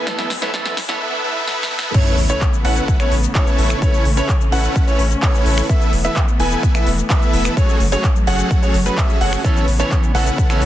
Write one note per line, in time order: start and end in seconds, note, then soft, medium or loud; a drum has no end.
0.00 0.97 A3 medium
0.00 riser medium
0.06 0.26 E3 medium
0.06 1.00 F#3 medium
0.06 1.00 G#3 medium
0.06 0.27 A3 medium
0.06 0.29 B3 medium
0.06 0.27 B3 medium
0.06 0.29 E4 medium
0.06 0.29 A4 medium
0.06 0.27 A4 loud
0.06 0.29 B4 medium
0.06 0.29 E5 medium
0.06 kick loud
0.06 snare loud
0.06 closed hi-hat medium
0.19 snare medium
0.19 closed hi-hat soft
0.30 0.46 F#1 loud
0.30 snare medium
0.30 open hi-hat loud
0.41 0.52 E3 medium
0.41 0.52 A3 medium
0.41 0.52 B3 loud
0.41 0.52 B3 medium
0.41 0.52 E4 loud
0.41 0.52 A4 medium
0.41 0.52 B4 medium
0.41 0.52 C#5 medium
0.41 0.52 E5 loud
0.41 snare medium
0.53 0.73 E3 medium
0.53 0.73 A3 medium
0.53 0.75 B3 medium
0.53 0.74 B3 medium
0.53 0.75 E4 medium
0.53 0.75 A4 medium
0.53 0.74 A4 loud
0.53 0.75 B4 medium
0.53 0.75 E5 medium
0.53 kick loud
0.53 snare medium
0.53 closed hi-hat medium
0.65 snare medium
0.65 closed hi-hat soft
0.77 0.93 F#1 loud
0.77 snare loud
0.77 open hi-hat loud
0.88 0.98 E3 medium
0.88 0.99 A3 medium
0.88 0.99 B3 medium
0.88 0.99 E4 medium
0.88 0.99 A4 medium
0.88 0.99 B4 medium
0.88 0.99 C#5 medium
0.88 0.99 E5 loud
0.88 snare medium
1.01 1.22 B3 medium
1.01 1.22 E4 medium
1.01 1.22 A4 medium
1.01 1.22 B4 medium
1.01 1.22 E5 medium
1.01 swell medium
1.24 1.46 B3 medium
1.24 1.46 E4 medium
1.24 1.46 A4 medium
1.24 1.46 B4 medium
1.24 1.46 E5 loud
1.47 1.69 B3 medium
1.47 1.69 E4 medium
1.47 1.69 A4 medium
1.47 1.69 B4 medium
1.47 1.69 E5 loud
1.47 snare medium
1.63 snare medium
1.71 1.93 B3 medium
1.71 1.93 E4 medium
1.71 1.93 A4 medium
1.71 1.93 B4 medium
1.71 1.93 E5 loud
1.79 snare loud
1.94 5.66 C#3 medium
1.94 5.66 A3 medium
1.94 3.80 B3 medium
1.94 2.16 C#4 medium
1.94 2.16 E4 medium
1.94 2.16 A4 medium
1.94 2.16 B4 medium
1.94 2.16 C#5 medium
1.94 kick loud
1.94 closed hi-hat medium
1.94 crash loud
1.94 sub drop medium
1.94 shaker medium
2.06 closed hi-hat soft
2.06 shaker soft
2.18 2.33 A1 loud
2.18 open hi-hat loud
2.30 2.43 C#4 loud
2.30 2.43 E4 loud
2.30 2.43 A4 medium
2.30 2.43 B4 medium
2.30 2.43 C#5 loud
2.30 closed hi-hat medium
2.30 shaker medium
2.41 kick loud
2.41 clap loud
2.41 closed hi-hat medium
2.41 shaker medium
2.53 closed hi-hat soft
2.53 shaker soft
2.65 2.80 A1 loud
2.65 2.97 C#4 medium
2.65 2.97 E4 medium
2.65 2.97 A4 medium
2.65 2.97 B4 medium
2.65 2.97 F#5 loud
2.65 2.97 F#5 medium
2.65 open hi-hat loud
2.76 closed hi-hat medium
2.76 shaker medium
2.88 kick loud
2.88 closed hi-hat medium
2.88 shaker medium
3.00 3.13 C#4 medium
3.00 3.13 E4 medium
3.00 3.13 A4 medium
3.00 3.13 B4 medium
3.00 3.13 C#5 medium
3.00 finger snap medium
3.00 closed hi-hat soft
3.00 shaker soft
3.12 3.27 A1 medium
3.12 open hi-hat loud
3.23 closed hi-hat medium
3.23 shaker medium
3.35 3.79 C#4 medium
3.35 3.79 E4 medium
3.35 3.79 A4 medium
3.35 3.79 B4 medium
3.35 3.79 C#5 medium
3.35 kick loud
3.35 clap loud
3.35 closed hi-hat medium
3.35 shaker medium
3.47 closed hi-hat soft
3.47 shaker soft
3.59 3.74 A1 medium
3.59 open hi-hat loud
3.70 finger snap medium
3.70 shaker medium
3.82 5.68 C#4 medium
3.82 4.04 C#4 medium
3.82 4.04 E4 medium
3.82 4.04 A4 medium
3.82 4.04 B4 medium
3.82 4.04 C#5 loud
3.82 kick loud
3.82 closed hi-hat medium
3.82 shaker medium
3.94 closed hi-hat soft
3.94 shaker soft
4.05 4.21 A1 loud
4.05 open hi-hat loud
4.17 4.31 C#4 loud
4.17 4.31 E4 loud
4.17 4.31 A4 loud
4.17 4.31 B4 loud
4.17 4.31 C#5 loud
4.17 closed hi-hat medium
4.17 shaker medium
4.29 kick loud
4.29 clap loud
4.29 closed hi-hat medium
4.29 shaker medium
4.41 closed hi-hat soft
4.41 shaker soft
4.52 4.68 A1 medium
4.52 4.85 C#4 medium
4.52 4.85 E4 medium
4.52 4.85 A4 medium
4.52 4.85 B4 medium
4.52 4.85 F#5 medium
4.52 4.85 F#5 loud
4.52 open hi-hat loud
4.64 closed hi-hat medium
4.64 shaker medium
4.76 kick loud
4.76 closed hi-hat medium
4.76 shaker medium
4.87 5.01 C#4 medium
4.87 5.01 E4 medium
4.87 5.01 A4 medium
4.87 5.01 B4 medium
4.87 5.01 C#5 medium
4.87 closed hi-hat soft
4.87 shaker soft
4.99 5.15 A1 medium
4.99 open hi-hat loud
5.11 closed hi-hat medium
5.11 shaker medium
5.22 5.67 C#4 medium
5.22 5.67 E4 medium
5.22 5.67 A4 medium
5.22 5.67 B4 medium
5.22 5.67 C#5 medium
5.22 kick loud
5.22 clap loud
5.22 closed hi-hat medium
5.22 shaker medium
5.34 closed hi-hat soft
5.34 shaker soft
5.46 5.62 A1 loud
5.46 open hi-hat loud
5.58 finger snap medium
5.58 shaker medium
5.69 7.55 E3 medium
5.69 10.65 A3 medium
5.69 7.55 B3 medium
5.69 5.91 B3 medium
5.69 5.91 E4 medium
5.69 5.91 A4 medium
5.69 5.91 B4 medium
5.69 5.91 E5 loud
5.69 kick loud
5.69 closed hi-hat medium
5.69 shaker medium
5.81 closed hi-hat soft
5.81 shaker soft
5.93 6.09 E1 loud
5.93 open hi-hat loud
6.05 6.18 B3 loud
6.05 6.18 E4 medium
6.05 6.18 A4 loud
6.05 6.18 B4 medium
6.05 6.18 E5 loud
6.05 shaker medium
6.16 kick loud
6.16 clap loud
6.16 closed hi-hat medium
6.16 shaker medium
6.28 closed hi-hat soft
6.28 shaker soft
6.40 6.55 E1 loud
6.40 6.72 B3 medium
6.40 6.72 E4 medium
6.40 6.72 A4 medium
6.40 6.72 B4 medium
6.40 6.72 G#5 medium
6.40 6.72 G#5 loud
6.40 open hi-hat loud
6.51 closed hi-hat medium
6.51 shaker medium
6.63 kick loud
6.63 closed hi-hat medium
6.63 shaker medium
6.75 6.88 B3 medium
6.75 6.88 E4 medium
6.75 6.88 A4 medium
6.75 6.88 B4 medium
6.75 6.88 E5 medium
6.75 finger snap medium
6.75 closed hi-hat soft
6.75 shaker soft
6.87 7.02 E1 medium
6.87 open hi-hat loud
6.98 closed hi-hat medium
6.98 shaker medium
7.10 7.54 B3 medium
7.10 7.54 E4 medium
7.10 7.54 A4 medium
7.10 7.54 B4 medium
7.10 7.54 E5 medium
7.10 kick loud
7.10 clap loud
7.10 closed hi-hat medium
7.10 shaker medium
7.22 closed hi-hat soft
7.22 shaker soft
7.33 7.49 E1 medium
7.33 open hi-hat loud
7.45 finger snap medium
7.45 closed hi-hat medium
7.45 shaker medium
7.57 9.43 F#3 medium
7.57 7.79 C#4 medium
7.57 7.79 F#4 medium
7.57 7.79 G#4 medium
7.57 7.79 A4 medium
7.57 7.79 C#5 loud
7.57 kick loud
7.57 closed hi-hat medium
7.57 shaker medium
7.69 closed hi-hat soft
7.69 shaker soft
7.80 7.96 F#1 loud
7.80 open hi-hat loud
7.92 8.06 C#4 loud
7.92 8.06 F#4 loud
7.92 8.06 G#4 loud
7.92 8.06 A4 loud
7.92 8.06 C#5 loud
7.92 shaker medium
8.04 kick loud
8.04 clap loud
8.04 closed hi-hat soft
8.04 shaker medium
8.16 closed hi-hat soft
8.16 shaker soft
8.27 8.43 F#1 loud
8.27 8.60 C#4 medium
8.27 8.60 F#4 medium
8.27 8.60 G#4 medium
8.27 8.60 A4 medium
8.27 8.60 F#5 medium
8.27 8.60 F#5 loud
8.27 open hi-hat loud
8.39 closed hi-hat medium
8.39 shaker medium
8.51 kick loud
8.51 closed hi-hat soft
8.51 shaker medium
8.62 8.76 C#4 medium
8.62 8.76 F#4 medium
8.62 8.76 G#4 medium
8.62 8.76 A4 medium
8.62 8.76 C#5 medium
8.62 closed hi-hat soft
8.62 shaker soft
8.74 8.90 F#1 loud
8.74 open hi-hat loud
8.86 8.96 C#4 loud
8.86 8.96 F#4 medium
8.86 8.96 G#4 medium
8.86 8.96 A4 medium
8.86 8.96 B4 loud
8.86 closed hi-hat medium
8.86 shaker medium
8.98 9.18 C#4 medium
8.98 9.18 F#4 medium
8.98 9.18 G#4 medium
8.98 9.18 A4 medium
8.98 9.18 E5 medium
8.98 kick loud
8.98 clap loud
8.98 closed hi-hat medium
8.98 shaker medium
9.09 closed hi-hat soft
9.09 shaker soft
9.21 9.37 F#1 medium
9.21 9.42 C#4 medium
9.21 9.42 F#4 medium
9.21 9.42 G#4 medium
9.21 9.42 A4 medium
9.21 9.42 F#5 medium
9.21 open hi-hat loud
9.33 finger snap medium
9.33 shaker medium
9.44 10.65 C#3 medium
9.44 9.64 E3 medium
9.44 10.65 B3 medium
9.44 9.64 B3 medium
9.44 9.66 C#4 medium
9.44 9.64 C#4 medium
9.44 9.66 E4 medium
9.44 9.66 A4 medium
9.44 9.65 A4 loud
9.44 9.66 B4 medium
9.44 9.66 C#5 loud
9.44 kick loud
9.44 shaker medium
9.56 closed hi-hat soft
9.56 shaker soft
9.68 9.84 A1 loud
9.68 open hi-hat loud
9.79 10.12 E3 medium
9.79 10.12 B3 medium
9.79 9.93 C#4 loud
9.79 10.12 C#4 medium
9.79 9.93 E4 medium
9.79 9.93 A4 loud
9.79 9.93 B4 loud
9.79 9.93 C#5 loud
9.79 10.12 C#5 medium
9.79 closed hi-hat medium
9.79 shaker medium
9.91 kick loud
9.91 clap loud
9.91 closed hi-hat medium
9.91 shaker medium
10.03 closed hi-hat soft
10.03 shaker soft
10.14 10.30 A1 medium
10.14 10.27 E3 medium
10.14 10.27 B3 medium
10.14 10.47 C#4 medium
10.14 10.27 C#4 medium
10.14 10.47 E4 medium
10.14 10.47 A4 medium
10.14 10.27 A4 loud
10.14 10.47 B4 medium
10.14 10.47 F#5 medium
10.14 10.47 F#5 loud
10.14 open hi-hat loud
10.27 shaker medium
10.38 kick loud
10.38 closed hi-hat soft
10.38 shaker medium
10.49 10.62 E3 medium
10.49 10.62 B3 medium
10.49 10.63 C#4 medium
10.49 10.62 C#4 medium
10.49 10.63 E4 medium
10.49 10.63 A4 medium
10.49 10.63 A4 loud
10.49 10.63 B4 medium
10.49 10.63 C#5 medium
10.49 finger snap medium
10.49 closed hi-hat soft
10.49 shaker soft
10.62 10.65 A1 medium
10.62 open hi-hat loud